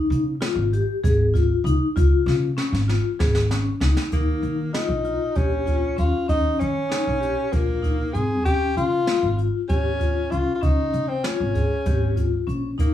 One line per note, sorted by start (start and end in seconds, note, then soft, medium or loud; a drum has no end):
0.00 0.22 D#4 medium
0.10 0.34 C#3 medium
0.10 closed hi-hat medium
0.41 0.62 F4 medium
0.41 snare loud
0.41 closed hi-hat medium
0.56 0.79 G#1 medium
0.73 0.94 G4 medium
0.73 closed hi-hat medium
1.04 1.50 G#1 medium
1.04 1.25 G#4 medium
1.04 kick loud
1.04 closed hi-hat medium
1.34 1.55 F4 medium
1.34 kick medium
1.34 closed hi-hat medium
1.64 1.76 C#2 medium
1.64 1.86 D#4 medium
1.64 closed hi-hat medium
1.96 2.20 C#2 medium
1.96 2.38 F4 medium
1.96 kick loud
1.96 closed hi-hat medium
2.26 2.50 C#3 medium
2.26 snare medium
2.57 2.78 C#4 medium
2.57 snare medium
2.72 2.96 G#1 medium
2.72 snare medium
2.88 3.10 F4 medium
2.88 snare medium
3.19 3.66 G#1 medium
3.19 3.41 G#4 medium
3.19 kick loud
3.19 snare medium
3.35 snare medium
3.51 3.72 C#4 medium
3.51 snare medium
3.80 3.92 C#2 medium
3.80 4.03 D#4 medium
3.80 snare medium
3.97 snare medium
4.12 4.36 D#2 medium
4.12 4.71 A#3 medium
4.12 4.55 D#4 medium
4.12 kick medium
4.12 closed hi-hat medium
4.42 4.66 D#3 medium
4.42 closed hi-hat soft
4.73 5.38 D#4 medium
4.73 4.95 F4 medium
4.73 snare medium
4.73 closed hi-hat medium
4.89 5.12 A#1 medium
5.04 5.26 F4 medium
5.04 closed hi-hat soft
5.35 5.83 A#1 medium
5.35 5.98 C#4 medium
5.35 5.57 G4 medium
5.35 kick medium
5.35 closed hi-hat medium
5.66 5.88 F4 medium
5.66 kick medium
5.66 closed hi-hat medium
5.97 6.10 D#2 medium
5.97 6.18 C#4 medium
5.97 6.27 F4 medium
5.97 closed hi-hat medium
6.28 6.52 D#2 medium
6.28 6.71 C#4 medium
6.28 6.61 D#4 medium
6.28 kick medium
6.28 closed hi-hat medium
6.59 6.84 D#3 medium
6.59 7.54 C#4 medium
6.59 closed hi-hat medium
6.90 7.11 D#4 medium
6.90 snare medium
6.90 closed hi-hat medium
7.07 7.30 A#1 medium
7.20 7.42 G4 medium
7.20 closed hi-hat medium
7.52 7.99 A#1 medium
7.52 8.15 A#3 medium
7.52 7.73 F4 medium
7.52 kick medium
7.52 closed hi-hat medium
7.82 8.04 D#4 medium
7.82 kick medium
7.82 closed hi-hat medium
8.14 8.46 G#2 medium
8.14 8.36 C4 medium
8.14 8.45 G#4 medium
8.14 closed hi-hat medium
8.44 8.69 C#2 medium
8.44 8.87 C#4 medium
8.44 8.74 G4 loud
8.44 kick medium
8.44 closed hi-hat medium
8.76 9.00 C#3 medium
8.76 9.39 F4 medium
8.76 closed hi-hat medium
9.06 9.28 F4 medium
9.06 snare loud
9.06 closed hi-hat medium
9.23 9.46 G#1 medium
9.37 9.59 F4 medium
9.37 closed hi-hat medium
9.68 10.16 G#1 medium
9.68 10.33 C#4 medium
9.68 9.90 G4 medium
9.68 kick medium
9.68 closed hi-hat medium
9.99 10.21 F4 medium
9.99 kick medium
9.99 closed hi-hat medium
10.30 10.43 C#2 medium
10.30 10.52 C#4 medium
10.30 10.54 F4 medium
10.30 closed hi-hat medium
10.55 10.64 F4 medium
10.61 10.86 C#2 medium
10.61 11.04 C#4 medium
10.61 11.10 D#4 medium
10.61 kick medium
10.61 closed hi-hat medium
10.93 11.16 C#3 medium
10.93 closed hi-hat medium
11.08 11.26 C4 medium
11.24 12.48 C#4 medium
11.24 11.45 F4 medium
11.24 snare loud
11.24 closed hi-hat medium
11.40 11.63 G#1 medium
11.54 11.76 G#4 medium
11.54 kick medium
11.54 closed hi-hat medium
11.86 12.33 G#1 medium
11.86 12.07 G4 medium
11.86 kick medium
11.86 closed hi-hat medium
12.16 12.38 F4 medium
12.16 kick medium
12.16 closed hi-hat medium
12.47 12.79 A#1 medium
12.47 12.68 C#4 medium
12.47 closed hi-hat medium
12.78 12.94 G#1 medium
12.78 12.94 A#3 medium
12.78 12.94 D#4 medium
12.78 kick medium
12.78 closed hi-hat medium